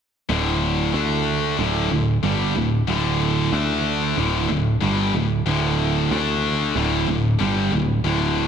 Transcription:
0.29 picked electric bass D1, distorted electric guitar D2 A2 D3
0.93 picked electric bass D2, distorted electric guitar D3 A3 D4
1.58 picked electric bass D1, distorted electric guitar D2 A2 D3
1.91 picked electric bass D1, distorted electric guitar D2 A2
2.23 picked electric bass G1, distorted electric guitar G2 D3 G3
2.56 picked electric bass D1, distorted electric guitar D2 A2
2.88 picked electric bass D1, distorted electric guitar D2 A2 D3
3.53 picked electric bass D2, distorted electric guitar D3 A3 D4
4.17 picked electric bass D1, distorted electric guitar D2 A2 D3
4.49 picked electric bass D1, distorted electric guitar D2 A2
4.81 picked electric bass G1, distorted electric guitar G2 D3 G3
5.14 picked electric bass D1, distorted electric guitar D2 A2
5.46 picked electric bass D1, distorted electric guitar D2 A2 D3
6.11 picked electric bass D2, distorted electric guitar D3 A3 D4
6.76 picked electric bass D1, distorted electric guitar D2 A2 D3
7.08 picked electric bass D1, distorted electric guitar D2 A2
7.39 picked electric bass G1, distorted electric guitar G2 D3 G3
7.72 picked electric bass D1, distorted electric guitar D2 A2
8.04 picked electric bass D1, distorted electric guitar D2 A2 D3

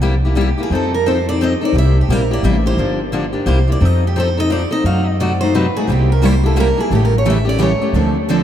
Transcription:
Already playing: upright bass C2
0.02 steel-string acoustic guitar C3 G3 A#3 E4 G4
0.25 steel-string acoustic guitar A#3 E4 G4
0.35 steel-string acoustic guitar C3 G3 A#3 E4 G4
0.41 steel-string acoustic guitar G4
0.58 steel-string acoustic guitar A#3 E4 G4
0.63 steel-string acoustic guitar G#4
0.70 upright bass F2, steel-string acoustic guitar F3 C4 D#4 A4
0.75 steel-string acoustic guitar A4
0.94 steel-string acoustic guitar A#4
1.06 steel-string acoustic guitar F3 C4 D#4 A4 C5
1.29 steel-string acoustic guitar C4 D#4 A4 D5
1.41 steel-string acoustic guitar F3 C4 D#4 A4 D#5
1.61 steel-string acoustic guitar C4 D#4 A4 D5
1.73 upright bass C2, steel-string acoustic guitar C3 G3 A#3 E4 G4
1.78 steel-string acoustic guitar E5
2.01 steel-string acoustic guitar G4
2.09 upright bass A#1, steel-string acoustic guitar C3 G3 A#3 E4 G4 A#4
2.31 steel-string acoustic guitar A#3 E4 G4 D5
2.42 upright bass A1, steel-string acoustic guitar C3 G3 A#3 E4 G4 E5
2.66 steel-string acoustic guitar A#3 E4 G4 C5
2.77 upright bass G1, steel-string acoustic guitar D3 F3 A#3 D4 G4
3.12 steel-string acoustic guitar D3 F3 A#3 D4 G4
3.33 steel-string acoustic guitar A#3 D4 G4
3.46 upright bass C2, steel-string acoustic guitar C3 G3 A#3 E4 G4 C5
3.67 steel-string acoustic guitar A#3 E4 G4
3.72 steel-string acoustic guitar D5
3.81 upright bass F2, steel-string acoustic guitar F3 C4 D#4 A4
3.85 steel-string acoustic guitar D#5
4.07 steel-string acoustic guitar G4
4.16 steel-string acoustic guitar F3 C4 D#4 A4 C5
4.37 steel-string acoustic guitar C4 D#4 A4 D#5
4.50 steel-string acoustic guitar F3 C4 D#4 A4 D5
4.71 steel-string acoustic guitar C4 D#4 A4 D#5
4.84 upright bass F#2, steel-string acoustic guitar C3 F#3 A3 D#4 F#4 F5
5.07 steel-string acoustic guitar D#5
5.20 steel-string acoustic guitar C3 F#3 A3 D#4 F#4 D5
5.41 steel-string acoustic guitar A3 D#4 F#4 C5
5.55 steel-string acoustic guitar C3 F#3 A3 D#4 F#4 B4
5.76 steel-string acoustic guitar A3 D#4 F#4 G#4
5.87 upright bass C2, steel-string acoustic guitar C3 G3 A#3 E4 G4
5.92 steel-string acoustic guitar G4
6.12 steel-string acoustic guitar A#4
6.22 steel-string acoustic guitar C3 G3 A#3 E4 G4 C5
6.44 steel-string acoustic guitar A#3 E4 G4 A4
6.56 steel-string acoustic guitar C3 G3 A#3 E4 G4
6.60 steel-string acoustic guitar A#4
6.77 steel-string acoustic guitar A#3 E4 G4 G#4
6.90 upright bass A1, steel-string acoustic guitar C#3 E3 G3 A3 C#4 E4 G4 A4
6.95 steel-string acoustic guitar G4
7.05 steel-string acoustic guitar A#4
7.18 steel-string acoustic guitar C#5
7.25 steel-string acoustic guitar C#3 E3 G3 A3 C#4 E4 G4 A4
7.30 steel-string acoustic guitar E5
7.45 steel-string acoustic guitar A3 C#4 G4
7.49 steel-string acoustic guitar D5
7.59 steel-string acoustic guitar C#3 E3 G3 A3 C#4 E4 G4 A4 C#5
7.82 steel-string acoustic guitar A3 C#4 G4
7.93 upright bass D2, steel-string acoustic guitar D3 F3 C4 D4 A4
8.29 steel-string acoustic guitar D3 F3 C4 D4 A4

